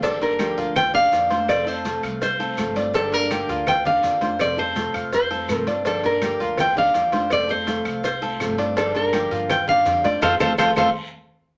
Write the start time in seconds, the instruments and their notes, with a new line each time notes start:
Already playing: upright bass G1
0.02 steel-string acoustic guitar D3 F3 A#3 D4 G4, cuban tres D4, nylon-string guitar A4, cowbell, high conga, long guiro, maracas
0.20 steel-string acoustic guitar A#3 D4 G4, nylon-string guitar A#4, cowbell, high conga, maracas
0.39 steel-string acoustic guitar D3 F3 A#3 D4 G4, cuban tres G4, cowbell, high conga, short guiro, claves, maracas
0.57 upright bass D2, cuban tres F4, high conga, short guiro, maracas
0.76 nylon-string guitar G5, muted steel-string acoustic guitar stroke, cowbell, high conga, low conga, long guiro, claves, maracas
0.94 steel-string acoustic guitar A#3 D4 G4, cuban tres D5, nylon-string guitar F5, high conga, maracas
1.12 upright bass F2, steel-string acoustic guitar D3 F3 A#3 D4 G4, cowbell, high conga, short guiro, maracas
1.30 steel-string acoustic guitar A#3 D4 G4, cuban tres C5, cowbell, high conga, short guiro, maracas
1.48 steel-string acoustic guitar C3 F3 A3 C4 F4, nylon-string guitar D5, cowbell, high conga, long guiro, claves, maracas
1.66 steel-string acoustic guitar A3 C4 F4, cuban tres A4, nylon-string guitar C5, high conga, maracas
1.85 steel-string acoustic guitar C3 F3 A3 C4 F4, cowbell, high conga, short guiro, maracas
2.03 upright bass C2, cuban tres F5, high conga, short guiro, claves, maracas
2.21 nylon-string guitar C5, muted steel-string acoustic guitar stroke, cowbell, high conga, long guiro, maracas
2.39 steel-string acoustic guitar A3 C4 F4, cuban tres A4, high conga, maracas
2.57 upright bass G1, steel-string acoustic guitar C3 F3 A3 C4 F4, cowbell, high conga, short guiro, claves, maracas
2.76 steel-string acoustic guitar A3 C4 F4, cuban tres D4, cowbell, high conga, short guiro, maracas
2.94 steel-string acoustic guitar D3 F3 A#3 D4 G4, cuban tres D4, nylon-string guitar A4, cowbell, long guiro, maracas
3.12 steel-string acoustic guitar A#3 D4 G4, nylon-string guitar A#4, cowbell, high conga, maracas
3.30 steel-string acoustic guitar D3 F3 A#3 D4 G4, cuban tres G4, cowbell, high conga, short guiro, claves, maracas
3.49 upright bass D2, cuban tres F4, high conga, short guiro, maracas
3.66 nylon-string guitar G5, muted steel-string acoustic guitar stroke, cowbell, high conga, low conga, long guiro, claves, maracas
3.84 steel-string acoustic guitar A#3 D4 G4, cuban tres D5, nylon-string guitar F5, high conga, low conga, maracas
4.02 upright bass F2, steel-string acoustic guitar D3 F3 A#3 D4 G4, cowbell, high conga, short guiro, maracas
4.20 steel-string acoustic guitar A#3 D4 G4, cuban tres C5, cowbell, high conga, short guiro, maracas
4.39 steel-string acoustic guitar C3 F3 A3 C4 F4, nylon-string guitar D5, cowbell, high conga, long guiro, claves, maracas
4.57 steel-string acoustic guitar A3 C4 F4, cuban tres A4, nylon-string guitar C5, high conga, maracas
4.75 steel-string acoustic guitar C3 F3 A3 C4 F4, cowbell, high conga, short guiro, maracas
4.94 upright bass F2, cuban tres F5, high conga, short guiro, claves, maracas
5.12 nylon-string guitar C5, muted steel-string acoustic guitar stroke, cowbell, high conga, long guiro, maracas
5.30 steel-string acoustic guitar A3 C4 F4, cuban tres A4, high conga, maracas
5.48 upright bass G2, steel-string acoustic guitar C3 F3 A3 C4 F4, cowbell, high conga, short guiro, claves, maracas
5.53 nylon-string guitar A#4
5.67 steel-string acoustic guitar A3 C4 F4, cuban tres D4, cowbell, high conga, short guiro, maracas
5.84 steel-string acoustic guitar D3 F3 A#3 D4 G4, cuban tres D4, nylon-string guitar A4, cowbell, high conga, long guiro, maracas
6.03 steel-string acoustic guitar A#3 D4 G4, nylon-string guitar A#4, cowbell, high conga, maracas
6.21 steel-string acoustic guitar D3 F3 A#3 D4 G4, cuban tres G4, cowbell, high conga, short guiro, claves, maracas
6.40 upright bass D2, cuban tres F4, high conga, short guiro, maracas
6.57 nylon-string guitar G5, muted steel-string acoustic guitar stroke, cowbell, high conga, low conga, long guiro, claves, maracas
6.76 steel-string acoustic guitar A#3 D4 G4, cuban tres D5, nylon-string guitar F5, high conga, low conga, maracas
6.94 upright bass F2, steel-string acoustic guitar D3 F3 A#3 D4 G4, cowbell, high conga, short guiro, maracas
7.12 steel-string acoustic guitar A#3 D4 G4, cuban tres C5, cowbell, high conga, short guiro, maracas
7.30 steel-string acoustic guitar C3 F3 A3 C4 F4, nylon-string guitar D5, cowbell, high conga, long guiro, claves, maracas
7.48 steel-string acoustic guitar A3 C4 F4, cuban tres A4, nylon-string guitar C5, high conga, maracas
7.66 steel-string acoustic guitar C3 F3 A3 C4 F4, cowbell, high conga, short guiro, maracas
7.85 upright bass C2, cuban tres F5, high conga, short guiro, claves, maracas
8.03 nylon-string guitar C5, muted steel-string acoustic guitar stroke, cowbell, high conga, long guiro, maracas
8.22 steel-string acoustic guitar A3 C4 F4, cuban tres A4, high conga, maracas
8.40 upright bass G1, steel-string acoustic guitar C3 F3 A3 C4 F4, cowbell, high conga, short guiro, claves, maracas
8.58 steel-string acoustic guitar A3 C4 F4, cuban tres D4, cowbell, short guiro, maracas
8.76 steel-string acoustic guitar D3 F3 A#3 D4 G4, cuban tres D4, nylon-string guitar A4, cowbell, long guiro, maracas
8.94 steel-string acoustic guitar A#3 D4 G4, nylon-string guitar A#4, cowbell, high conga, maracas
9.12 steel-string acoustic guitar D3 F3 A#3 D4 G4, cuban tres G4, cowbell, high conga, short guiro, claves, maracas
9.31 upright bass G2, cuban tres F4, high conga, short guiro, maracas
9.49 nylon-string guitar G5, muted steel-string acoustic guitar stroke, cowbell, high conga, low conga, claves, maracas
9.67 steel-string acoustic guitar A#3 D4 G4, cuban tres D5, nylon-string guitar F5, high conga, low conga, maracas
9.85 upright bass F2, steel-string acoustic guitar D3 F3 A#3 D4 G4, cowbell, high conga, short guiro, maracas
10.03 steel-string acoustic guitar A#3 D4 G4, cuban tres C5, nylon-string guitar D5, cowbell, high conga, short guiro, maracas
10.21 upright bass F2, steel-string acoustic guitar F3 A3 C4, cuban tres F4 A4 C5, nylon-string guitar A4 C5 F5, cowbell, low conga, long guiro, claves, maracas
10.40 upright bass F2, steel-string acoustic guitar F3 A3 C4, cuban tres F4 A4 C5, nylon-string guitar A4 C5 F5, cowbell, low conga, claves, maracas
10.58 upright bass F2, steel-string acoustic guitar F3 A3 C4, cuban tres F4 A4 C5, nylon-string guitar A4 C5 F5, cowbell, low conga, claves, maracas
10.76 upright bass F2, steel-string acoustic guitar F3 A3 C4, cuban tres F4 A4 C5, nylon-string guitar A4 C5 F5, cowbell, low conga, long guiro, claves, maracas